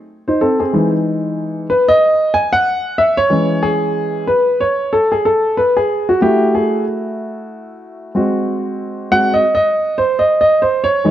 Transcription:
0.28 0.41 D#4 medium
0.28 0.40 C5 medium
0.41 0.59 C4 medium
0.41 0.59 A4 medium
0.60 0.91 C4 medium
0.60 0.91 G#4 medium
0.73 1.66 E3 medium
0.73 1.66 G#3 soft
0.73 1.66 D#4 medium
1.70 1.90 B4 medium
1.89 2.36 D#5 loud
2.34 2.54 G#5 loud
2.53 3.00 F#5 loud
2.98 3.18 E5 medium
3.17 3.65 C#5 loud
3.30 4.23 E3 medium
3.30 4.24 G#3 soft
3.30 4.24 C#4 medium
3.63 4.30 G#4 medium
4.28 4.61 B4 medium
4.61 4.94 C#5 medium
4.93 5.12 A4 medium
5.12 5.25 G#4 medium
5.25 5.58 A4 medium
5.57 5.77 B4 medium
5.77 6.10 G#4 medium
6.09 6.20 F#4 medium
6.21 8.11 A3 medium
6.21 8.12 E4 medium
6.21 8.11 F#4 medium
6.21 6.52 G4 medium
6.55 6.84 G#4 medium
8.15 9.10 G#3 medium
8.15 9.10 C4 medium
8.15 9.11 F#4 medium
9.11 9.41 G#3 soft
9.11 9.41 C4 soft
9.11 9.41 F#4 medium
9.11 9.34 F#5 loud
9.34 9.53 D#5 medium
9.55 9.99 D#5 medium
9.98 10.20 C5 medium
10.19 10.39 D#5 medium
10.41 10.61 D#5 medium
10.62 10.84 C5 medium
10.84 11.11 C#5 loud
11.04 11.11 E3 medium
11.04 11.11 G#3 medium
11.04 11.11 D#4 medium

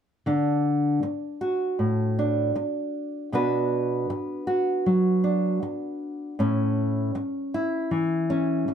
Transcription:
0.26 1.02 D3 medium
0.26 2.17 D4 soft
1.03 muted nylon-string guitar stroke medium
1.41 3.29 F#4 medium
1.79 2.54 A2 medium
2.19 3.29 D4 soft
2.56 muted nylon-string guitar stroke medium
3.32 4.09 B2 medium
3.32 6.42 B3 soft
3.32 5.23 D4 soft
3.32 4.46 F#4 medium
3.32 6.42 B4 medium
4.10 muted nylon-string guitar stroke medium
4.47 6.34 F#4 medium
4.86 5.61 F#3 medium
5.24 6.34 D4 soft
5.63 muted nylon-string guitar stroke medium
6.39 7.15 A2 medium
6.39 8.29 C#4 medium
7.15 muted nylon-string guitar stroke medium
7.54 8.74 E4 medium
7.91 8.67 E3 medium
8.30 8.74 C#4 soft
8.68 muted nylon-string guitar stroke medium

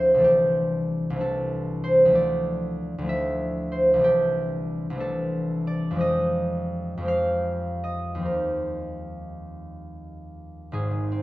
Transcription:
0.00 0.24 D2 medium
0.00 0.26 F3 soft
0.00 3.17 C4 soft
0.00 2.12 E4 soft
0.00 1.82 C5 medium
0.00 2.14 D5 medium
0.00 3.08 E5 medium
0.14 1.09 C2 medium
0.14 1.12 E3 soft
0.18 1.15 A3 soft
0.18 1.17 D4 soft
0.18 0.31 A4 medium
0.24 2.17 G4 medium
1.10 2.13 C2 medium
1.10 2.14 E3 soft
1.16 2.09 A3 soft
1.16 4.00 D4 soft
1.21 4.99 A4 medium
1.84 3.71 C5 medium
2.05 2.97 D2 medium
2.05 3.00 F3 soft
2.10 3.02 A3 soft
2.10 3.05 E4 soft
2.15 5.66 D5 medium
2.98 4.01 D2 medium
2.98 4.03 F3 soft
3.04 3.98 A3 soft
3.04 6.01 E4 soft
3.09 6.03 E5 medium
3.72 7.62 C5 medium
3.94 4.89 C2 medium
3.94 4.91 E3 soft
3.99 4.94 A3 soft
3.99 4.97 D4 medium
4.04 5.97 G4 medium
4.90 5.98 C2 medium
4.90 5.99 E3 medium
4.95 6.00 A3 medium
4.95 6.02 D4 soft
5.00 6.03 A4 medium
5.67 6.04 D5 medium
5.91 6.96 F2 medium
5.91 6.99 F3 soft
5.95 7.02 G#3 soft
5.95 7.04 G4 soft
6.01 7.82 D#5 medium
6.97 8.23 F2 medium
6.97 8.16 F3 soft
7.03 8.26 G#3 soft
7.03 8.22 G4 soft
7.08 10.98 F5 medium
7.84 11.22 D#5 medium
8.15 10.71 D#2 soft
8.15 11.22 F3 soft
8.20 11.11 C4 soft
8.20 10.75 G4 soft
8.25 10.77 A#4 medium
10.72 11.22 G#1 medium
10.72 11.22 G#2 medium
10.72 11.22 G#4 medium
10.91 11.22 D#3 soft
11.12 11.22 C4 medium

